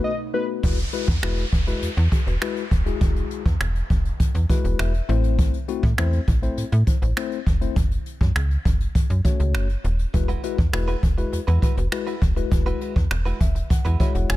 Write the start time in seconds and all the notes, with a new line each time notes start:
Already playing: B2 A3 B3 D#4 F#4 B4
0.04 D#5
0.33 A3 B3 D#4 F#4 B4
0.63 E1 G#3 E4 F#4 B4, kick, closed hi-hat, downlifter
0.78 closed hi-hat
0.93 G#3 E4 F#4 B4, closed hi-hat
1.08 E2, kick, closed hi-hat
1.23 E1 G#3 E4 F#4 B4, finger snap, closed hi-hat
1.38 closed hi-hat
1.52 E1, kick, closed hi-hat
1.67 G#3 E4 F#4 B4, closed hi-hat
1.82 E2, closed hi-hat
1.97 E2, closed hi-hat
2.12 F#4 G#4, kick, closed hi-hat
2.26 E1 F#4 B4, closed hi-hat
2.41 G#3 E4 F#4 B4, finger snap, closed hi-hat
2.56 closed hi-hat
2.71 D#1, kick, closed hi-hat
2.86 G#3 E4 F#4 G#4, closed hi-hat
3.01 E1, kick, closed hi-hat
3.16 closed hi-hat
3.31 closed hi-hat
3.45 E2, kick, closed hi-hat
3.60 E1, finger snap, closed hi-hat
3.75 closed hi-hat
3.90 E1, kick, closed hi-hat
4.05 closed hi-hat
4.20 E2, kick, closed hi-hat
4.35 E2, closed hi-hat
4.49 G#3 E4 F#4 B4, kick, closed hi-hat
4.64 E1, closed hi-hat
4.79 E1 E5, finger snap, closed hi-hat
4.94 closed hi-hat
5.09 A1 A3 C4 E4 C5, closed hi-hat
5.24 closed hi-hat
5.39 kick, closed hi-hat
5.54 closed hi-hat
5.68 A3 C4 E4 F#4, closed hi-hat
5.83 A2, kick, closed hi-hat
5.98 E2 A3 C4 E4 C5, finger snap, closed hi-hat
6.13 closed hi-hat
6.28 A1, kick, closed hi-hat
6.42 A3 C4 E4 C5, closed hi-hat
6.57 A2, closed hi-hat
6.72 A2, closed hi-hat
6.87 E4 C5, kick, closed hi-hat
7.02 A1 E4 C5, closed hi-hat
7.16 A3 C4 E4 C5, finger snap, closed hi-hat
7.32 closed hi-hat
7.47 F1, kick, closed hi-hat
7.61 A3 C4 E4 C5, closed hi-hat
7.76 F#1, kick, closed hi-hat
7.91 closed hi-hat
8.06 closed hi-hat
8.21 F#2, kick, closed hi-hat
8.36 C#2, finger snap, closed hi-hat
8.50 closed hi-hat
8.65 F#1, kick, closed hi-hat
8.80 closed hi-hat
8.95 F#2, kick, closed hi-hat
9.10 F#2, closed hi-hat
9.25 A3 C#4 F#4 C#5, kick, closed hi-hat
9.40 C#2, closed hi-hat
9.54 F#1, finger snap, closed hi-hat
9.69 closed hi-hat
9.84 D#1, closed hi-hat
9.99 closed hi-hat
10.14 E1 G#3 E4 F#4 B4, muted clean electric guitar stroke, kick, closed hi-hat
10.28 G#3 E4 F#4 B4, closed hi-hat
10.43 G#3 E4 F#4 B4, closed hi-hat
10.58 E2, muted clean electric guitar stroke, kick, closed hi-hat
10.73 E1 G#3 E4 F#4 B4, finger snap, muted clean electric guitar stroke, closed hi-hat
10.88 G#3 E4 F#4 B4, closed hi-hat
11.03 E1, muted clean electric guitar stroke, kick, closed hi-hat
11.18 G#3 E4 F#4 B4, muted clean electric guitar stroke, closed hi-hat
11.32 E2, muted clean electric guitar stroke, closed hi-hat
11.47 E2 G#3 E4 F#4 B4, closed hi-hat
11.62 G#3 E4 F#4 B4, kick, closed hi-hat
11.77 E1 F#4 B4, muted clean electric guitar stroke, closed hi-hat
11.92 G#3 E4 F#4 B4, finger snap, muted clean electric guitar stroke, closed hi-hat
12.07 G#3 E4 F#4 B4, closed hi-hat
12.22 D#1, kick, closed hi-hat
12.36 G#3 E4 F#4 B4, muted clean electric guitar stroke, closed hi-hat
12.51 E1, muted clean electric guitar stroke, kick, closed hi-hat
12.66 G#3 E4 F#4 B4, closed hi-hat
12.81 G#3 E4 F#4 B4, closed hi-hat
12.96 E2, muted clean electric guitar stroke, kick, closed hi-hat
13.11 E1, finger snap, muted clean electric guitar stroke, closed hi-hat
13.25 G#3 E4 F#4 B4, closed hi-hat
13.40 E1 E5, kick, closed hi-hat
13.55 muted clean electric guitar stroke, closed hi-hat
13.70 E2 F#5, muted clean electric guitar stroke, kick, closed hi-hat
13.85 E2 G#3 E4 F#4 B4, closed hi-hat
14.00 G#3 E4 F#4 B4 C#5 E5, kick, closed hi-hat
14.15 E1 F#5, muted clean electric guitar stroke, closed hi-hat
14.29 E1 G#5, finger snap, muted clean electric guitar stroke, closed hi-hat